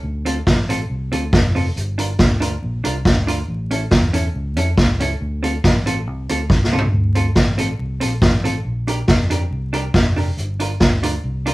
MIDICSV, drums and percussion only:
0, 0, Header, 1, 2, 480
1, 0, Start_track
1, 0, Key_signature, -1, "minor"
1, 0, Tempo, 430725
1, 41, Time_signature, 4, 2, 24, 8
1, 12859, End_track
2, 0, Start_track
2, 0, Title_t, "Drums"
2, 288, Note_on_c, 9, 42, 84
2, 400, Note_off_c, 9, 42, 0
2, 520, Note_on_c, 9, 38, 101
2, 522, Note_on_c, 9, 36, 92
2, 632, Note_off_c, 9, 38, 0
2, 633, Note_off_c, 9, 36, 0
2, 777, Note_on_c, 9, 42, 95
2, 888, Note_off_c, 9, 42, 0
2, 1252, Note_on_c, 9, 42, 83
2, 1364, Note_off_c, 9, 42, 0
2, 1481, Note_on_c, 9, 36, 122
2, 1483, Note_on_c, 9, 38, 118
2, 1592, Note_off_c, 9, 36, 0
2, 1594, Note_off_c, 9, 38, 0
2, 1737, Note_on_c, 9, 46, 54
2, 1848, Note_off_c, 9, 46, 0
2, 1966, Note_on_c, 9, 44, 70
2, 2077, Note_off_c, 9, 44, 0
2, 2212, Note_on_c, 9, 42, 85
2, 2324, Note_off_c, 9, 42, 0
2, 2438, Note_on_c, 9, 38, 103
2, 2443, Note_on_c, 9, 36, 107
2, 2549, Note_off_c, 9, 38, 0
2, 2555, Note_off_c, 9, 36, 0
2, 2694, Note_on_c, 9, 42, 92
2, 2805, Note_off_c, 9, 42, 0
2, 3172, Note_on_c, 9, 42, 94
2, 3283, Note_off_c, 9, 42, 0
2, 3402, Note_on_c, 9, 36, 113
2, 3403, Note_on_c, 9, 38, 121
2, 3514, Note_off_c, 9, 36, 0
2, 3515, Note_off_c, 9, 38, 0
2, 3656, Note_on_c, 9, 42, 93
2, 3768, Note_off_c, 9, 42, 0
2, 4134, Note_on_c, 9, 42, 85
2, 4245, Note_off_c, 9, 42, 0
2, 4357, Note_on_c, 9, 38, 115
2, 4363, Note_on_c, 9, 36, 98
2, 4468, Note_off_c, 9, 38, 0
2, 4475, Note_off_c, 9, 36, 0
2, 4610, Note_on_c, 9, 42, 90
2, 4721, Note_off_c, 9, 42, 0
2, 5089, Note_on_c, 9, 42, 88
2, 5200, Note_off_c, 9, 42, 0
2, 5322, Note_on_c, 9, 36, 104
2, 5322, Note_on_c, 9, 38, 106
2, 5433, Note_off_c, 9, 36, 0
2, 5433, Note_off_c, 9, 38, 0
2, 5576, Note_on_c, 9, 42, 88
2, 5687, Note_off_c, 9, 42, 0
2, 6059, Note_on_c, 9, 42, 90
2, 6170, Note_off_c, 9, 42, 0
2, 6285, Note_on_c, 9, 38, 106
2, 6287, Note_on_c, 9, 36, 103
2, 6396, Note_off_c, 9, 38, 0
2, 6398, Note_off_c, 9, 36, 0
2, 6538, Note_on_c, 9, 42, 101
2, 6650, Note_off_c, 9, 42, 0
2, 7013, Note_on_c, 9, 42, 100
2, 7124, Note_off_c, 9, 42, 0
2, 7241, Note_on_c, 9, 36, 102
2, 7243, Note_on_c, 9, 38, 60
2, 7352, Note_off_c, 9, 36, 0
2, 7354, Note_off_c, 9, 38, 0
2, 7399, Note_on_c, 9, 38, 73
2, 7511, Note_off_c, 9, 38, 0
2, 7560, Note_on_c, 9, 43, 117
2, 7671, Note_off_c, 9, 43, 0
2, 7970, Note_on_c, 9, 42, 76
2, 8081, Note_off_c, 9, 42, 0
2, 8196, Note_on_c, 9, 38, 106
2, 8202, Note_on_c, 9, 36, 100
2, 8307, Note_off_c, 9, 38, 0
2, 8313, Note_off_c, 9, 36, 0
2, 8451, Note_on_c, 9, 42, 98
2, 8563, Note_off_c, 9, 42, 0
2, 8926, Note_on_c, 9, 42, 96
2, 9038, Note_off_c, 9, 42, 0
2, 9157, Note_on_c, 9, 38, 115
2, 9158, Note_on_c, 9, 36, 121
2, 9268, Note_off_c, 9, 38, 0
2, 9270, Note_off_c, 9, 36, 0
2, 9417, Note_on_c, 9, 42, 89
2, 9529, Note_off_c, 9, 42, 0
2, 9893, Note_on_c, 9, 42, 88
2, 10004, Note_off_c, 9, 42, 0
2, 10115, Note_on_c, 9, 38, 113
2, 10121, Note_on_c, 9, 36, 93
2, 10227, Note_off_c, 9, 38, 0
2, 10233, Note_off_c, 9, 36, 0
2, 10369, Note_on_c, 9, 42, 86
2, 10481, Note_off_c, 9, 42, 0
2, 10849, Note_on_c, 9, 42, 85
2, 10960, Note_off_c, 9, 42, 0
2, 11079, Note_on_c, 9, 36, 106
2, 11080, Note_on_c, 9, 38, 123
2, 11190, Note_off_c, 9, 36, 0
2, 11192, Note_off_c, 9, 38, 0
2, 11336, Note_on_c, 9, 46, 50
2, 11447, Note_off_c, 9, 46, 0
2, 11562, Note_on_c, 9, 44, 73
2, 11674, Note_off_c, 9, 44, 0
2, 11811, Note_on_c, 9, 42, 81
2, 11922, Note_off_c, 9, 42, 0
2, 12038, Note_on_c, 9, 38, 105
2, 12043, Note_on_c, 9, 36, 96
2, 12149, Note_off_c, 9, 38, 0
2, 12155, Note_off_c, 9, 36, 0
2, 12294, Note_on_c, 9, 42, 97
2, 12406, Note_off_c, 9, 42, 0
2, 12776, Note_on_c, 9, 42, 92
2, 12859, Note_off_c, 9, 42, 0
2, 12859, End_track
0, 0, End_of_file